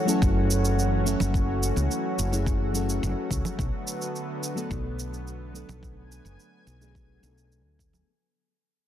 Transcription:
0.00 3.54 E3 medium
0.00 8.03 F#3 medium
0.00 8.03 A3 medium
0.00 3.55 C#4 medium
0.00 5.79 F#4 medium
0.05 1.01 F#3 medium
0.05 1.02 A3 medium
0.05 1.02 C#4 medium
0.05 1.03 E4 medium
0.05 1.03 A4 loud
0.05 shaker soft
0.22 1.14 F#1 medium
0.22 kick loud
0.22 shaker soft
0.51 shaker medium
0.65 shaker soft
0.79 shaker soft
1.04 2.28 F#3 medium
1.04 2.28 A3 medium
1.04 2.29 C#4 medium
1.04 2.29 E4 medium
1.04 2.30 A4 medium
1.04 shaker medium
1.20 1.71 F#1 medium
1.20 low conga medium
1.20 shaker soft
1.34 kick loud
1.34 shaker soft
1.63 shaker medium
1.76 1.87 C#2 medium
1.76 high conga medium
1.76 shaker soft
1.91 shaker soft
2.19 3.02 F#1 medium
2.19 shaker medium
2.31 2.41 F#3 medium
2.31 2.41 A3 medium
2.31 2.42 C#4 medium
2.31 2.42 E4 medium
2.31 2.42 G#4 medium
2.31 shaker soft
2.46 kick loud
2.46 shaker soft
2.72 3.56 F#3 medium
2.72 3.56 A3 medium
2.72 3.57 C#4 medium
2.72 3.57 E4 medium
2.72 3.58 A4 medium
2.72 shaker medium
2.89 shaker soft
3.03 3.13 F#1 medium
3.03 shaker soft
3.31 3.41 C#2 medium
3.31 kick loud
3.31 shaker medium
3.45 low conga medium
3.45 shaker soft
3.59 3.69 B1 medium
3.59 8.04 D3 medium
3.59 8.03 B3 medium
3.59 kick loud
3.59 shaker soft
3.87 shaker medium
4.02 shaker soft
4.16 shaker soft
4.43 shaker medium
4.55 5.50 F#3 medium
4.55 5.51 A3 medium
4.55 5.51 B3 medium
4.55 5.52 D4 medium
4.55 5.52 A4 loud
4.55 shaker soft
4.71 5.63 B1 medium
4.71 kick loud
4.71 shaker soft
4.99 shaker medium
5.14 shaker soft
5.27 shaker soft
5.53 6.76 F#3 medium
5.53 6.77 A3 medium
5.53 6.77 B3 medium
5.53 6.78 D4 medium
5.53 6.78 A4 medium
5.53 shaker medium
5.69 6.19 B1 medium
5.69 low conga medium
5.69 shaker soft
5.83 8.05 G#5 medium
5.83 kick loud
5.83 shaker soft
6.12 shaker medium
6.25 6.35 F#1 medium
6.25 high conga medium
6.25 shaker soft
6.40 shaker soft
6.67 7.22 B1 medium
6.67 shaker medium
6.80 6.90 F#3 medium
6.80 6.90 A3 medium
6.80 6.90 B3 medium
6.80 6.90 D4 medium
6.80 6.91 G#4 medium
6.80 shaker soft
6.95 kick loud
6.95 shaker soft
7.20 7.65 B1 medium
7.20 8.04 F#3 medium
7.20 8.05 A3 medium
7.20 8.05 B3 medium
7.20 8.06 D4 medium
7.20 shaker medium
7.24 8.06 A4 medium
7.38 shaker soft
7.52 shaker soft
7.65 8.01 D2 medium
7.79 kick medium
7.79 shaker medium
7.93 low conga medium
7.93 shaker soft

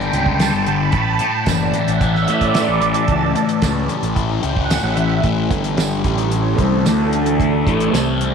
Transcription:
0.00 0.12 G2 medium
0.00 0.65 D3 medium
0.00 0.39 G3 medium
0.00 0.13 B3 medium
0.00 0.94 D4 medium
0.00 snare soft
0.13 0.49 C#2 medium
0.13 0.94 B3 medium
0.13 closed hi-hat medium
0.26 kick medium
0.40 0.93 G3 medium
0.40 snare loud
0.40 closed hi-hat medium
0.40 tambourine loud
0.53 0.89 G1 medium
0.66 0.93 D3 medium
0.66 closed hi-hat medium
0.92 1.17 A1 medium
0.92 3.10 A2 medium
0.92 kick loud
0.92 closed hi-hat medium
1.19 2.55 A3 medium
1.19 closed hi-hat medium
1.46 1.71 F#1 loud
1.46 2.80 E3 medium
1.46 kick medium
1.46 snare loud
1.46 closed hi-hat medium
1.46 tambourine medium
1.73 2.28 C#4 medium
1.73 closed hi-hat medium
1.88 2.24 A1 loud
1.88 closed hi-hat medium
2.01 3.36 E4 medium
2.01 kick loud
2.01 closed hi-hat medium
2.15 snare soft
2.28 2.65 A2 medium
2.28 3.63 C#4 medium
2.28 closed hi-hat medium
2.41 kick medium
2.41 closed hi-hat medium
2.54 3.34 A3 medium
2.54 snare loud
2.54 closed hi-hat medium
2.54 tambourine medium
2.69 2.93 A1 medium
2.81 3.61 E3 medium
2.81 3.59 A5 medium
2.81 closed hi-hat medium
2.94 closed hi-hat medium
3.08 3.33 C#2 medium
3.08 4.44 A2 medium
3.08 kick loud
3.08 closed hi-hat medium
3.35 4.69 A3 medium
3.35 closed hi-hat medium
3.49 closed hi-hat medium
3.62 3.87 C#2 medium
3.62 4.95 E3 medium
3.62 kick medium
3.62 snare loud
3.62 closed hi-hat medium
3.62 tambourine medium
3.88 4.41 C#4 medium
3.88 closed hi-hat medium
4.03 4.40 A1 medium
4.03 closed hi-hat medium
4.16 5.24 E4 medium
4.16 kick loud
4.16 closed hi-hat medium
4.43 4.80 C#2 medium
4.43 5.24 C#4 medium
4.43 closed hi-hat medium
4.57 kick medium
4.70 5.24 A3 medium
4.70 snare loud
4.70 closed hi-hat medium
4.70 tambourine loud
4.83 5.20 A1 medium
4.96 5.23 E3 medium
4.96 closed hi-hat medium
5.23 5.49 A1 medium
5.23 5.50 A2 medium
5.23 5.51 E3 loud
5.23 5.51 A3 loud
5.23 kick loud
5.23 closed hi-hat medium
5.50 6.02 G1 medium
5.50 6.04 G2 medium
5.50 6.04 D3 loud
5.50 6.05 G3 loud
5.50 kick loud
5.50 closed hi-hat medium
5.64 closed hi-hat medium
5.77 snare loud
5.77 closed hi-hat medium
5.77 tambourine loud
6.04 6.55 A1 medium
6.04 6.58 A2 medium
6.04 6.85 E3 medium
6.04 6.58 E3 medium
6.04 7.66 A3 medium
6.04 6.59 A3 medium
6.04 6.85 C#4 medium
6.04 7.92 A4 medium
6.04 6.85 C#5 medium
6.04 kick loud
6.04 closed hi-hat medium
6.18 closed hi-hat medium
6.31 closed hi-hat medium
6.58 6.84 C2 medium
6.58 6.85 C3 medium
6.58 6.86 G3 medium
6.58 6.86 C4 medium
6.58 kick medium
6.58 closed hi-hat medium
6.85 7.63 D2 medium
6.85 7.67 D3 medium
6.85 7.67 A3 medium
6.85 7.67 D4 medium
6.85 7.67 D4 loud
6.85 snare loud
6.85 closed hi-hat medium
6.85 tambourine loud
7.13 closed hi-hat medium
7.26 closed hi-hat medium
7.40 kick loud
7.40 closed hi-hat medium
7.67 7.92 A1 loud
7.67 7.92 A2 loud
7.67 7.93 E3 loud
7.67 7.93 A3 loud
7.67 kick loud
7.67 closed hi-hat medium
7.80 closed hi-hat medium
7.93 8.34 C2 medium
7.93 8.34 C3 medium
7.93 8.34 G3 loud
7.93 8.34 C4 loud
7.93 snare loud
7.93 closed hi-hat medium
7.93 tambourine loud
8.21 closed hi-hat medium

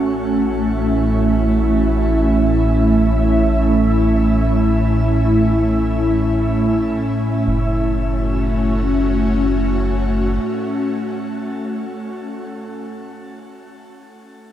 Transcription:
0.00 7.43 A1 medium
0.00 7.48 A2 medium
0.00 7.45 A3 medium
0.00 7.47 C#4 medium
0.00 1.77 F#4 medium
0.00 7.47 E5 medium
0.17 7.48 E4 medium
7.46 10.39 F#1 medium
7.46 12.18 A3 medium
7.61 12.18 C#4 medium
7.77 12.19 F#4 medium

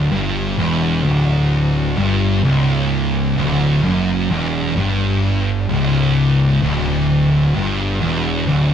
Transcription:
0.00 0.10 D2 loud
0.11 0.55 G1 medium
0.11 0.57 G2 loud
0.57 1.02 E1 medium
0.57 1.03 E2 loud
1.03 1.94 D1 medium
1.03 1.96 D2 loud
1.97 2.41 G1 medium
1.97 2.42 G2 loud
2.43 3.33 C#1 loud
2.43 3.35 C#2 loud
3.36 3.81 D1 medium
3.36 3.82 D2 loud
3.83 4.27 F#1 medium
3.83 4.28 F#2 loud
4.30 4.73 E1 medium
4.30 4.75 E2 loud
4.76 5.65 G1 medium
4.76 5.68 G2 loud
5.69 6.58 C#1 medium
5.69 6.61 C#2 loud
6.63 7.52 D1 medium
6.63 7.54 D2 loud
7.55 7.99 G1 medium
7.55 8.00 G2 loud
8.01 8.46 E1 medium
8.01 8.47 E2 loud
8.47 8.74 D1 medium
8.47 8.74 D2 loud

